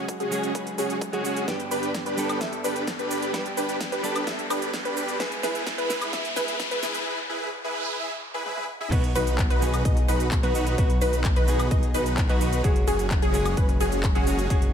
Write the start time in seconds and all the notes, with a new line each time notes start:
Already playing: F#3 G#3 C#4 F#4, riser
0.08 kick, closed hi-hat, cabasa
0.20 C#4 F#4 G#4, closed hi-hat, cabasa
0.31 F#3 G#3 C#4 G#4, open hi-hat, cabasa
0.43 closed hi-hat, cabasa
0.55 C#4 F#4 B4, kick, closed hi-hat, cabasa
0.67 closed hi-hat, cabasa
0.78 C#4 F#4 G#4, open hi-hat, cabasa
0.90 closed hi-hat, cabasa
1.01 kick, closed hi-hat, cabasa
1.13 F#3 G#3 C#4 F#4 G#4, closed hi-hat, cabasa
1.24 F#3 G#3 C#4 F#4, open hi-hat, cabasa
1.36 closed hi-hat, cabasa
1.47 G2 G3 B3 D4 G4 B4, kick, snare, closed hi-hat, cabasa
1.60 closed hi-hat, cabasa
1.71 D4 G4 B4, open hi-hat, cabasa
1.83 closed hi-hat, cabasa
1.94 kick, snare, closed hi-hat, cabasa
2.06 D4 G4 B4, closed hi-hat, cabasa
2.17 G2 G3 B3 D4 A4, open hi-hat, cabasa
2.29 closed hi-hat, cabasa, high woodblock
2.41 D4 G4 E5, kick, snare, closed hi-hat, cabasa
2.53 closed hi-hat, cabasa
2.64 D4 G4 B4, open hi-hat, cabasa
2.76 closed hi-hat, cabasa
2.87 kick, snare, closed hi-hat, cabasa
2.99 D4 G4 B4, closed hi-hat, cabasa
3.11 open hi-hat, cabasa
3.22 closed hi-hat, cabasa
3.33 G2 G3 B3 D4 G4 B4, kick, snare, closed hi-hat, cabasa
3.46 closed hi-hat, cabasa
3.57 D4 G4 B4, open hi-hat, cabasa
3.69 closed hi-hat, cabasa
3.81 kick, snare, closed hi-hat, cabasa
3.92 D4 G4 B4, closed hi-hat, cabasa
4.03 G2 G3 B3 D4 A4, open hi-hat, cabasa
4.16 closed hi-hat, cabasa, high woodblock
4.27 D4 G4 E5, kick, snare, closed hi-hat, cabasa
4.39 closed hi-hat, cabasa
4.50 D4 G4 B4, open hi-hat, cabasa, high woodblock
4.62 closed hi-hat, cabasa
4.74 kick, snare, closed hi-hat, cabasa
4.85 D4 G4 B4, closed hi-hat, cabasa
4.97 open hi-hat, cabasa
5.08 closed hi-hat, cabasa
5.19 G#3 B3 E4 G#4 B4, kick, snare, closed hi-hat, cabasa
5.32 closed hi-hat, cabasa
5.43 E4 G#4 B4, snare, open hi-hat, cabasa
5.55 closed hi-hat, cabasa
5.67 kick, snare, closed hi-hat, cabasa
5.78 E4 G#4 B4, closed hi-hat, cabasa
5.89 G#3 B3 E4 B4, snare, open hi-hat, cabasa
6.01 closed hi-hat, cabasa, high woodblock
6.13 E4 G#4 E5, kick, snare, closed hi-hat, cabasa
6.25 closed hi-hat, cabasa
6.36 E4 G#4 B4, snare, open hi-hat, cabasa
6.48 closed hi-hat, cabasa
6.60 kick, snare, closed hi-hat, cabasa
6.71 E4 G#4 B4, closed hi-hat, cabasa
6.83 snare, open hi-hat, cabasa
6.94 closed hi-hat, cabasa
7.06 E4 G#4 B4, noise sweep
7.29 E4 G#4 B4
7.64 E4 G#4 B4
7.99 E4 G#4 E5
8.34 E4 G#4 B4
8.46 E4 G#4 B4, high tom
8.57 high tom
8.80 E4 G#4 E5, mid tom
8.91 B1 B2 F#3 B3 D#4 F#4 B4, kick, closed hi-hat, crash, cabasa
9.04 closed hi-hat
9.15 B1 D#4 F#4 B4, open hi-hat, cabasa
9.27 closed hi-hat, cabasa
9.38 kick, clap, closed hi-hat, cabasa
9.50 B1 D#4 F#4 B4, closed hi-hat
9.61 B2 F#3 B3 D#4 G#4, open hi-hat, cabasa
9.74 closed hi-hat, cabasa, high woodblock
9.85 B1 D#4 F#4 D#5, kick, closed hi-hat, cabasa
9.97 closed hi-hat
10.08 B1 D#4 F#4 B4, open hi-hat, cabasa
10.20 closed hi-hat, cabasa
10.31 kick, clap, closed hi-hat, cabasa
10.43 B1 B2 F#3 B3 D#4 F#4 B4, closed hi-hat
10.54 B2 F#3 B3 D#4 F#4, open hi-hat, cabasa
10.67 closed hi-hat, cabasa
10.77 B1 B2 F#3 B3 D#4 F#4 B4, kick, closed hi-hat, cabasa
10.90 closed hi-hat
11.01 B1 D#4 F#4 B4, open hi-hat, cabasa
11.13 closed hi-hat, cabasa
11.24 kick, clap, closed hi-hat, cabasa
11.36 B1 D#4 F#4 B4, closed hi-hat
11.47 B2 F#3 B3 D#4 G#4, open hi-hat, cabasa
11.59 closed hi-hat, cabasa, high woodblock
11.71 B1 D#4 F#4 D#5, kick, closed hi-hat, cabasa
11.83 closed hi-hat
11.94 B1 D#4 F#4 B4, open hi-hat, cabasa
12.06 closed hi-hat, cabasa
12.17 kick, clap, closed hi-hat, cabasa
12.29 B1 B2 F#3 B3 D#4 F#4 B4, clap, closed hi-hat
12.40 F#3 B3 D#4 F#4, open hi-hat, cabasa
12.53 closed hi-hat, cabasa
12.63 F#1 F#3 G#3 C#4 F#4 G#4, kick, closed hi-hat, cabasa
12.76 closed hi-hat
12.87 F#1 C#4 F#4 G#4, open hi-hat, cabasa
12.99 closed hi-hat, cabasa
13.11 kick, clap, closed hi-hat, cabasa
13.22 F#1 C#4 F#4 G#4, closed hi-hat
13.33 F#3 G#3 C#4 G#4, open hi-hat, cabasa
13.46 closed hi-hat, cabasa, high woodblock
13.57 F#1 C#4 F#4 B4, kick, closed hi-hat, cabasa
13.69 closed hi-hat
13.80 F#1 C#4 F#4 G#4, open hi-hat, cabasa
13.92 closed hi-hat, cabasa
14.03 kick, clap, closed hi-hat, cabasa
14.15 F#1 F#3 G#3 C#4 F#4 G#4, closed hi-hat
14.27 F#3 G#3 C#4 F#4, open hi-hat, cabasa
14.39 closed hi-hat, cabasa
14.49 F#1 F#3 G#3 C#4 F#4 G#4, kick, closed hi-hat, cabasa
14.62 closed hi-hat